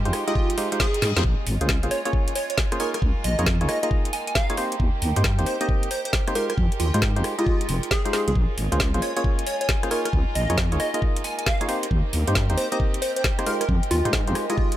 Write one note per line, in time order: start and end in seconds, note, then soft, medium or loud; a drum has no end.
0.00 1.22 G#3 medium
0.00 1.22 D#4 medium
0.00 1.22 G4 medium
0.00 6.35 D#5 medium
0.00 1.24 G5 medium
0.05 0.11 F2 medium
0.05 0.24 G#3 medium
0.05 0.24 D#4 medium
0.05 0.24 F4 medium
0.05 0.24 G4 medium
0.05 0.24 C5 medium
0.05 closed hi-hat soft
0.13 cross-stick medium
0.13 open hi-hat loud
0.27 0.56 G#3 medium
0.27 0.56 D#4 medium
0.27 0.56 F4 medium
0.27 0.78 F4 loud
0.27 0.56 G4 medium
0.27 0.56 D#5 loud
0.27 closed hi-hat medium
0.35 kick loud
0.35 reverse cymbal medium
0.50 closed hi-hat medium
0.58 0.70 G#3 loud
0.58 0.70 D#4 medium
0.58 0.70 F4 medium
0.58 0.70 G4 medium
0.58 0.70 C5 loud
0.58 open hi-hat loud
0.72 0.87 G#3 loud
0.72 0.87 D#4 medium
0.72 0.87 F4 medium
0.72 0.87 G4 medium
0.72 0.87 C5 loud
0.72 closed hi-hat medium
0.80 1.01 G#4 loud
0.80 kick loud
0.80 snare loud
0.94 closed hi-hat medium
1.02 1.13 G#2 medium
1.02 1.11 G#4 medium
1.02 snare medium
1.02 open hi-hat loud
1.16 1.23 F2 medium
1.16 1.23 G#3 loud
1.16 1.23 D#4 medium
1.16 1.23 F4 medium
1.16 1.23 G4 medium
1.16 1.22 G#4 medium
1.16 1.23 C5 loud
1.16 snare loud
1.16 closed hi-hat medium
1.24 1.36 A#1 loud
1.24 4.54 G#3 medium
1.24 2.78 C#4 medium
1.24 4.54 F4 medium
1.24 kick loud
1.46 1.58 G#1 medium
1.46 open hi-hat loud
1.61 1.84 C#2 medium
1.61 1.68 A#3 medium
1.61 1.68 C#4 medium
1.61 1.68 F4 medium
1.61 1.68 G#4 medium
1.61 1.68 C5 loud
1.61 2.80 G#5 medium
1.61 closed hi-hat medium
1.69 kick loud
1.69 snare loud
1.83 1.89 A#1 medium
1.83 2.02 A#3 medium
1.83 2.02 C#4 medium
1.83 2.02 F4 medium
1.83 2.02 G#4 medium
1.83 2.02 C5 medium
1.83 closed hi-hat soft
1.91 2.00 C#5 medium
1.91 open hi-hat loud
2.05 2.34 A#3 loud
2.05 2.34 C#4 medium
2.05 2.34 F4 medium
2.05 2.34 G#4 medium
2.05 2.34 C#5 loud
2.05 2.10 C#5 medium
2.05 closed hi-hat medium
2.13 kick loud
2.28 closed hi-hat medium
2.35 2.45 C#5 medium
2.35 open hi-hat loud
2.50 2.55 C#5 medium
2.50 closed hi-hat medium
2.58 kick loud
2.58 snare loud
2.72 2.79 A#3 medium
2.72 2.79 C#4 medium
2.72 2.79 F4 medium
2.72 2.79 G#4 medium
2.72 2.79 C5 loud
2.72 cross-stick medium
2.72 closed hi-hat medium
2.80 2.98 A#3 medium
2.80 6.32 A#3 medium
2.80 6.32 D#4 medium
2.80 2.98 D#4 medium
2.80 2.98 F4 medium
2.80 2.98 G#4 medium
2.80 14.77 A#4 medium
2.80 2.89 A#4 medium
2.80 2.98 C#5 loud
2.80 open hi-hat loud
2.94 2.99 A#4 medium
2.94 cross-stick medium
2.94 closed hi-hat medium
3.02 3.13 C#2 loud
3.02 kick loud
3.24 3.36 A#1 loud
3.24 3.44 D#5 medium
3.24 open hi-hat loud
3.39 3.63 F2 medium
3.39 3.46 A#3 medium
3.39 3.46 D#4 medium
3.39 3.46 F4 medium
3.39 3.46 G#4 medium
3.39 3.46 C#5 loud
3.39 8.35 G5 medium
3.39 cross-stick soft
3.39 closed hi-hat medium
3.46 kick loud
3.46 snare loud
3.61 3.67 C#2 loud
3.61 3.80 A#3 medium
3.61 3.80 D#4 medium
3.61 3.80 F4 medium
3.61 3.80 G#4 medium
3.61 3.80 C#5 medium
3.61 closed hi-hat soft
3.69 3.78 D#5 medium
3.69 cross-stick medium
3.69 open hi-hat medium
3.83 4.11 A#3 medium
3.83 4.11 D#4 medium
3.83 4.11 F4 medium
3.83 4.11 G#4 medium
3.83 3.88 D#5 medium
3.83 4.11 D#5 loud
3.83 closed hi-hat medium
3.91 kick loud
4.05 closed hi-hat soft
4.13 4.22 G#5 medium
4.13 open hi-hat loud
4.27 4.33 G#5 medium
4.27 closed hi-hat medium
4.35 4.63 F5 loud
4.35 kick loud
4.35 snare loud
4.50 4.56 A#3 medium
4.50 4.56 D#4 medium
4.50 4.56 F4 medium
4.50 4.56 G#4 medium
4.50 4.56 C#5 loud
4.50 closed hi-hat soft
4.57 4.76 A#3 medium
4.57 4.76 C4 medium
4.57 4.76 D#4 medium
4.57 4.76 G4 medium
4.57 8.32 G4 medium
4.57 4.76 C5 loud
4.57 open hi-hat medium
4.72 closed hi-hat medium
4.80 4.91 D#2 loud
4.80 kick loud
5.02 5.13 D#2 loud
5.02 open hi-hat loud
5.16 5.40 G2 medium
5.16 5.24 A#3 medium
5.16 5.24 C4 medium
5.16 5.24 D#4 medium
5.16 5.24 G4 medium
5.16 5.24 C5 loud
5.16 closed hi-hat medium
5.24 kick loud
5.24 snare loud
5.39 5.45 D#2 medium
5.39 5.57 A#3 medium
5.39 5.57 C4 medium
5.39 5.57 D#4 medium
5.39 5.57 G4 medium
5.39 5.57 C5 medium
5.39 closed hi-hat soft
5.46 5.56 C5 medium
5.46 open hi-hat medium
5.61 5.89 A#3 loud
5.61 5.89 C4 medium
5.61 5.89 D#4 medium
5.61 5.89 G4 medium
5.61 5.66 C5 medium
5.61 5.89 D#5 loud
5.61 closed hi-hat medium
5.69 kick loud
5.83 closed hi-hat medium
5.91 6.00 C5 medium
5.91 open hi-hat loud
6.05 6.10 C5 medium
6.05 closed hi-hat medium
6.13 kick loud
6.13 snare loud
6.28 6.34 A#3 medium
6.28 6.34 C4 medium
6.28 6.34 D#4 medium
6.28 6.34 G4 medium
6.28 6.34 C5 loud
6.28 cross-stick medium
6.28 closed hi-hat soft
6.35 6.53 G#3 medium
6.35 11.65 G#3 medium
6.35 6.53 D#4 medium
6.35 8.33 D#4 medium
6.35 6.53 F4 medium
6.35 6.53 G4 medium
6.35 6.45 A#4 medium
6.35 6.53 C5 loud
6.35 open hi-hat medium
6.40 14.77 D#5 medium
6.50 6.55 A#4 medium
6.50 cross-stick medium
6.50 closed hi-hat medium
6.58 6.69 F2 loud
6.58 kick loud
6.72 closed hi-hat soft
6.80 6.91 D#2 medium
6.80 7.00 F4 medium
6.80 open hi-hat loud
6.94 7.18 G#2 medium
6.94 7.01 G#3 medium
6.94 7.01 D#4 medium
6.94 7.01 F4 medium
6.94 7.01 G4 medium
6.94 7.01 C5 loud
6.94 cross-stick soft
6.94 closed hi-hat medium
7.02 kick loud
7.02 snare loud
7.16 7.23 F2 loud
7.16 7.35 G#3 medium
7.16 7.35 D#4 medium
7.16 7.35 F4 medium
7.16 7.35 G4 medium
7.16 7.35 C5 medium
7.16 closed hi-hat soft
7.24 cross-stick medium
7.24 open hi-hat medium
7.38 7.67 G#3 loud
7.38 7.67 D#4 medium
7.38 7.67 F4 medium
7.38 7.89 F4 loud
7.38 7.67 G4 medium
7.38 7.67 D#5 loud
7.38 closed hi-hat medium
7.47 kick loud
7.61 closed hi-hat medium
7.69 7.80 F1 loud
7.69 open hi-hat loud
7.83 closed hi-hat medium
7.91 8.12 G#4 medium
7.91 kick loud
7.91 snare loud
8.05 8.12 G#3 medium
8.05 8.12 D#4 medium
8.05 8.12 F4 medium
8.05 8.12 G4 medium
8.05 8.12 C5 loud
8.05 closed hi-hat soft
8.13 8.31 G#3 medium
8.13 8.31 D#4 medium
8.13 8.31 F4 medium
8.13 8.31 G4 medium
8.13 8.22 G#4 medium
8.13 8.31 C5 loud
8.13 snare medium
8.13 open hi-hat medium
8.28 8.34 C2 loud
8.28 8.33 G#4 medium
8.28 closed hi-hat medium
8.35 8.47 A#1 loud
8.35 9.90 C#4 medium
8.35 11.65 F4 medium
8.35 kick loud
8.58 8.69 G#1 loud
8.58 open hi-hat loud
8.72 8.96 C#2 medium
8.72 8.79 A#3 medium
8.72 8.79 C#4 medium
8.72 8.79 F4 medium
8.72 8.79 G#4 medium
8.72 8.79 C5 loud
8.72 11.69 G#5 loud
8.72 closed hi-hat medium
8.80 kick loud
8.80 snare loud
8.94 9.00 A#1 loud
8.94 9.13 A#3 medium
8.94 9.13 C#4 medium
8.94 9.13 F4 medium
8.94 9.13 G#4 medium
8.94 9.13 C5 medium
8.94 closed hi-hat soft
9.02 9.11 C#5 medium
9.02 open hi-hat medium
9.17 9.45 A#3 medium
9.17 9.45 C#4 medium
9.17 9.45 F4 medium
9.17 9.45 G#4 medium
9.17 9.22 C#5 medium
9.17 9.45 C#5 loud
9.17 closed hi-hat medium
9.24 kick loud
9.39 closed hi-hat medium
9.47 9.56 C#5 medium
9.47 open hi-hat loud
9.61 9.66 C#5 medium
9.61 closed hi-hat medium
9.69 kick loud
9.69 snare loud
9.83 9.90 A#3 medium
9.83 9.90 C#4 medium
9.83 9.90 F4 medium
9.83 9.90 G#4 medium
9.83 9.90 C5 loud
9.83 cross-stick medium
9.83 closed hi-hat medium
9.91 10.09 A#3 medium
9.91 13.43 A#3 medium
9.91 10.09 D#4 medium
9.91 14.77 D#4 medium
9.91 10.09 F4 medium
9.91 10.09 G#4 medium
9.91 10.00 A#4 medium
9.91 10.09 C#5 loud
9.91 open hi-hat medium
10.05 10.10 A#4 medium
10.05 cross-stick medium
10.05 closed hi-hat medium
10.13 10.24 C#2 loud
10.13 kick loud
10.35 10.47 A#1 medium
10.35 10.55 D#5 medium
10.35 open hi-hat loud
10.50 10.74 F2 medium
10.50 10.57 A#3 medium
10.50 10.57 D#4 medium
10.50 10.57 F4 medium
10.50 10.57 G#4 medium
10.50 10.57 C#5 loud
10.50 cross-stick soft
10.50 closed hi-hat medium
10.58 kick loud
10.58 snare loud
10.72 10.78 C#2 loud
10.72 10.91 A#3 medium
10.72 10.91 D#4 medium
10.72 10.91 F4 medium
10.72 10.91 G#4 medium
10.72 10.91 C#5 medium
10.72 closed hi-hat soft
10.80 10.89 D#5 medium
10.80 cross-stick medium
10.80 open hi-hat medium
10.94 11.22 A#3 medium
10.94 11.22 D#4 medium
10.94 11.22 F4 medium
10.94 11.22 G#4 medium
10.94 11.22 D#5 loud
10.94 10.99 D#5 medium
10.94 closed hi-hat medium
11.02 kick loud
11.16 closed hi-hat medium
11.24 11.34 G#5 medium
11.24 open hi-hat loud
11.38 11.44 G#5 medium
11.38 closed hi-hat medium
11.46 11.74 F5 medium
11.46 kick loud
11.46 snare loud
11.61 11.67 A#3 loud
11.61 11.67 D#4 medium
11.61 11.68 F4 medium
11.61 11.68 G#4 medium
11.61 11.68 C#5 loud
11.61 closed hi-hat medium
11.68 11.87 A#3 medium
11.68 11.87 C4 medium
11.68 14.77 C4 medium
11.68 11.87 D#4 medium
11.68 11.87 G4 medium
11.68 14.77 G4 medium
11.68 11.87 C5 loud
11.68 open hi-hat medium
11.83 closed hi-hat medium
11.91 12.02 D#2 loud
11.91 kick loud
12.13 12.24 D#2 medium
12.13 open hi-hat loud
12.28 12.51 G2 medium
12.28 12.35 A#3 medium
12.28 12.35 C4 medium
12.28 12.35 D#4 medium
12.28 12.35 G4 medium
12.28 12.35 C5 loud
12.28 14.77 G5 medium
12.28 closed hi-hat medium
12.35 kick loud
12.35 snare loud
12.50 12.56 D#2 loud
12.50 12.69 A#3 medium
12.50 12.69 C4 medium
12.50 12.69 D#4 medium
12.50 12.69 G4 medium
12.50 12.69 C5 medium
12.50 closed hi-hat soft
12.57 12.67 C5 medium
12.57 open hi-hat medium
12.72 13.00 A#3 medium
12.72 13.00 C4 medium
12.72 13.00 D#4 medium
12.72 13.00 G4 medium
12.72 12.77 C5 medium
12.72 13.00 D#5 loud
12.72 closed hi-hat medium
12.80 kick loud
12.94 closed hi-hat medium
13.02 13.11 C5 medium
13.02 open hi-hat loud
13.16 13.21 C5 medium
13.16 closed hi-hat medium
13.24 kick loud
13.24 snare loud
13.39 13.45 A#3 medium
13.39 13.45 C4 medium
13.39 13.45 D#4 medium
13.39 13.45 G4 medium
13.39 13.45 C5 loud
13.39 cross-stick medium
13.39 closed hi-hat medium
13.46 13.65 G#3 medium
13.46 14.77 G#3 medium
13.46 13.65 D#4 medium
13.46 13.65 F4 medium
13.46 13.65 G4 medium
13.46 13.56 A#4 medium
13.46 13.65 C5 loud
13.46 open hi-hat loud
13.61 13.66 A#4 medium
13.61 cross-stick medium
13.61 closed hi-hat medium
13.69 13.80 F2 loud
13.69 kick loud
13.83 closed hi-hat soft
13.91 14.02 D#2 loud
13.91 14.11 F4 medium
13.91 open hi-hat loud
14.05 14.29 G#2 medium
14.05 14.12 G#3 medium
14.05 14.12 D#4 medium
14.05 14.12 F4 medium
14.05 14.12 G4 medium
14.05 14.12 C5 loud
14.05 cross-stick soft
14.05 closed hi-hat medium
14.13 kick loud
14.13 snare loud
14.27 14.34 F2 medium
14.27 14.46 G#3 medium
14.27 14.46 D#4 medium
14.27 14.46 F4 medium
14.27 14.46 G4 medium
14.27 14.46 C5 medium
14.27 closed hi-hat soft
14.35 cross-stick medium
14.35 open hi-hat loud
14.50 14.77 G#3 medium
14.50 14.77 D#4 medium
14.50 14.77 F4 medium
14.50 14.77 F4 loud
14.50 14.77 G4 medium
14.50 14.77 D#5 loud
14.50 closed hi-hat medium
14.58 kick loud
14.72 closed hi-hat medium